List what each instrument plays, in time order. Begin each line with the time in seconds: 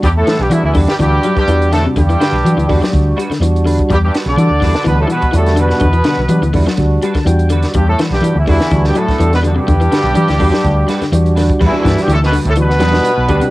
0.03 fingered electric bass E2, trombone G2, trombone section G2, horn section G3 G4, muted clean electric guitar stroke, kick, closed hi-hat
0.16 trombone A2, trombone section A2, horn section A3 A4
0.27 clean electric guitar E3 G3 D4 F#4 B4, snare, closed hi-hat
0.39 fingered electric bass B1, trombone G2, trombone section G2, horn section G3 G4
0.49 trombone E2, trombone section E2, fingered electric bass E3, clean electric guitar E3, horn section E3 E4, tonewheel organ G3 D4 F#4, closed hi-hat
0.63 fingered electric bass D2, trombone E2, trombone section E2, horn section E3 E4
0.73 fingered electric bass E2, clean electric guitar D3 G3 D4 F#4 B4, tonewheel organ G3 D4 G4, kick, open hi-hat
0.87 trombone section G2, trombone G2, horn section G3 G4, snare, closed hi-hat
0.99 fingered electric bass D2, trombone section G2, trombone G2, clean electric guitar E3, tonewheel organ G3 D4 F#4, horn section G3 G4, kick, closed hi-hat
1.23 clean electric guitar F#3 G3 D4 B4, muted clean electric guitar stroke, closed hi-hat
1.35 trombone G2, trombone section G2, horn section G3 G4, muted fingered electric bass stroke, kick, closed hi-hat
1.47 fingered electric bass E2, clean electric guitar E3, tonewheel organ G3 D4 F#4, closed hi-hat
1.62 closed hi-hat
1.72 trombone section A2, trombone A2, clean electric guitar D3 G3 D4 F#4 B4, horn section A3 A4, snare, closed hi-hat
1.86 clean electric guitar C3
1.96 fingered electric bass E2, trombone G2, trombone section G2, clean electric guitar D3, horn section G3 G4, kick, closed hi-hat
2.10 clean electric guitar E3, closed hi-hat
2.20 clean electric guitar D3 G3 D4 F#4 B4, snare, closed hi-hat
2.32 fingered electric bass B1
2.43 fingered electric bass E3, clean electric guitar F#3, tonewheel organ G3 D4 F#4, closed hi-hat
2.57 fingered electric bass D2, clean electric guitar E3, closed hi-hat
2.67 fingered electric bass E2, clean electric guitar D3 D4 F#4 B4, tonewheel organ G3 D4 F#4, kick, open hi-hat
2.82 clean electric guitar F#3, snare
2.90 fingered electric bass D2, tonewheel organ G3 D4 F#4, kick
2.95 closed hi-hat
3.16 clean electric guitar G3 D4 F#4 B4, closed hi-hat
3.30 clean electric guitar D3, muted fingered electric bass stroke, snare, closed hi-hat
3.40 fingered electric bass E2, clean electric guitar E3, tonewheel organ G3 D4 F#4, closed hi-hat
3.56 closed hi-hat
3.65 clean electric guitar D3 G3 D4 B4, open hi-hat
3.79 kick, closed hi-hat
3.90 fingered electric bass E2, trombone section G2, trombone G2, clean electric guitar G3, horn section G3 G4, kick, closed hi-hat
4.04 trombone G2, trombone section G2, horn section G3 G4
4.14 clean electric guitar G3 D4 F#4 B4, snare, closed hi-hat
4.26 fingered electric bass B1, trombone D3, trombone section D3, horn section D4 D5
4.37 fingered electric bass E3, clean electric guitar E3, tonewheel organ G3 D4 F#4, closed hi-hat
4.50 fingered electric bass D2
4.61 fingered electric bass E2, clean electric guitar D3 G3 D4 F#4 B4, tonewheel organ G3 D4 E4, kick, snare, open hi-hat
4.74 clean electric guitar D4 F#4 B4, snare, closed hi-hat
4.84 fingered electric bass D2, trombone B2, clean electric guitar E3, tonewheel organ G3 D4 F#4, horn section B3 B4, kick, closed hi-hat
4.89 trombone section B2
5.00 trombone A2, trombone section A2, horn section A3 A4
5.08 trombone section B2, clean electric guitar E3 G3, horn section B3 B4, muted clean electric guitar stroke, closed hi-hat
5.12 trombone B2, clean electric guitar F#4 B4
5.22 muted fingered electric bass stroke, kick, closed hi-hat
5.32 fingered electric bass E2, trombone section A2, trombone D3, clean electric guitar E3, tonewheel organ G3 D4 F#4, closed hi-hat
5.37 horn section A3 A4
5.46 snare, closed hi-hat
5.56 trombone section B2, trombone B2, clean electric guitar D3 G3 D4 F#4 B4, horn section B3 B4, closed hi-hat
5.69 muted clean electric guitar stroke, snare
5.80 fingered electric bass E2, clean electric guitar D3, kick, closed hi-hat
5.93 clean electric guitar E3, closed hi-hat
6.04 clean electric guitar D3 G3 D4 F#4 B4, snare, closed hi-hat
6.18 fingered electric bass B1
6.29 fingered electric bass E3, clean electric guitar F#3, tonewheel organ G3 D4 G4, closed hi-hat
6.41 fingered electric bass D2, clean electric guitar E3, closed hi-hat
6.54 fingered electric bass E2, clean electric guitar D3 G3 D4 F#4 B4, tonewheel organ G3 D4 E4, kick, open hi-hat
6.67 clean electric guitar F#3 D4 F#4, muted clean electric guitar stroke, snare
6.77 fingered electric bass D2, tonewheel organ G3 D4 F#4, kick, closed hi-hat
7.02 clean electric guitar G3 D4 F#4 B4, tonewheel organ A5, closed hi-hat
7.14 clean electric guitar D3, muted fingered electric bass stroke, kick, snare, closed hi-hat
7.25 fingered electric bass E2, clean electric guitar E3, tonewheel organ G3 D4 F#4 G5, closed hi-hat
7.39 closed hi-hat
7.50 clean electric guitar D3 G3 D4 F#4 B4, tonewheel organ D5, closed hi-hat
7.63 snare, closed hi-hat
7.73 fingered electric bass E2, trombone section G2, trombone G2, clean electric guitar G3, horn section G3 G4, kick, closed hi-hat
7.88 trombone section A2, trombone A2, horn section A3 A4
7.99 clean electric guitar E3 G3 D4 F#4 B4, snare, closed hi-hat
8.11 fingered electric bass B1, trombone section G2, trombone G2, horn section G3 G4, snare
8.21 fingered electric bass E3, clean electric guitar E3, tonewheel organ G3 D4 F#4, closed hi-hat
8.35 fingered electric bass D2, trombone section E2, trombone E2, horn section E3 E4
8.47 fingered electric bass E2, trombone E2, trombone section E2, clean electric guitar D3 G3 D4 F#4 B4, horn section E3 E4, tonewheel organ G3 D4 F#4, kick, open hi-hat
8.60 clean electric guitar D4 F#4 B4, snare, closed hi-hat
8.71 fingered electric bass D2, clean electric guitar E3, tonewheel organ G3 D4 F#4, kick, closed hi-hat
8.84 trombone section G2, trombone G2, horn section G3 G4, snare
8.95 trombone A2, trombone section A2, clean electric guitar F#3 G3 D4 F#4 B4, horn section A3 A4, closed hi-hat
9.08 clean electric guitar D4 F#4 B4, muted fingered electric bass stroke, kick, snare, closed hi-hat
9.19 fingered electric bass E2, clean electric guitar E3, tonewheel organ G3 D4 F#4, closed hi-hat
9.33 trombone B2, trombone section B2, horn section B3 B4, snare, closed hi-hat
9.43 trombone G2, trombone section G2, clean electric guitar D3 G3 D4 F#4 B4, horn section G3 G4, closed hi-hat
9.56 clean electric guitar C3
9.68 fingered electric bass E2, clean electric guitar D3, kick, closed hi-hat
9.81 clean electric guitar E3, closed hi-hat
9.92 clean electric guitar D3 G3 D4 F#4 B4, snare, closed hi-hat
10.04 fingered electric bass B1
10.14 fingered electric bass E3, clean electric guitar F#3, tonewheel organ G3 D4 G4, closed hi-hat
10.28 fingered electric bass D2, clean electric guitar E3, snare, closed hi-hat
10.39 fingered electric bass E2, clean electric guitar D3 G3 D4 F#4 B4, tonewheel organ G3 D4 F#4, kick, open hi-hat
10.52 clean electric guitar F#3 D4 F#4 B4, snare
10.64 fingered electric bass D2, tonewheel organ G3 D4 F#4, kick, closed hi-hat
10.88 clean electric guitar G3 D4 F#4 B4, snare, closed hi-hat
11.01 clean electric guitar D3, muted fingered electric bass stroke, snare, closed hi-hat
11.12 fingered electric bass E2, clean electric guitar E3, tonewheel organ G3 D4 F#4, closed hi-hat
11.26 closed hi-hat
11.35 clean electric guitar D3 G3 D4 B4, snare, open hi-hat
11.50 kick, closed hi-hat
11.60 fingered electric bass E2, clean electric guitar G3 D4 F#4 B4, kick, crash
11.65 trombone E2, trombone section E2, horn section E3 E4
11.71 tonewheel organ G3 D4 F#4, clean electric guitar D4 F#4 B4, muted fingered electric bass stroke
11.77 trombone section E2, trombone E2, horn section E3 E4
11.83 fingered electric bass G2, clean electric guitar E3 G3 D4 F#4 B4, kick, snare, closed hi-hat
11.98 trombone G2, trombone section G2, horn section G3 G4, snare, closed hi-hat
12.08 fingered electric bass D2, clean electric guitar E3, closed hi-hat
12.12 trombone section A2, trombone D3, horn section A3 A4
12.23 trombone B2, trombone section B2, horn section B3 B4, snare
12.32 clean electric guitar D3 G3 F#4 B4, muted clean electric guitar stroke, open hi-hat
12.45 fingered electric bass D2, trombone section A2, trombone A2, horn section A3 A4, kick, closed hi-hat
12.55 trombone section B2, clean electric guitar E3, tonewheel organ G3 D4 F#4, closed hi-hat
12.60 trombone B2, horn section B3 B4
12.69 clean electric guitar D4 F#4, snare
12.79 fingered electric bass E2, clean electric guitar F#3 G3 D4 F#4 B4, tonewheel organ G3 D4 F#4, snare, closed hi-hat
12.91 tonewheel organ G3 D4 F#4, snare
13.03 muted clean electric guitar stroke, closed hi-hat
13.18 fingered electric bass B1
13.28 fingered electric bass D2, clean electric guitar D3 G3 D4 F#4 B4, tonewheel organ G3 D4 G4, kick, closed hi-hat
13.41 clean electric guitar C3, closed hi-hat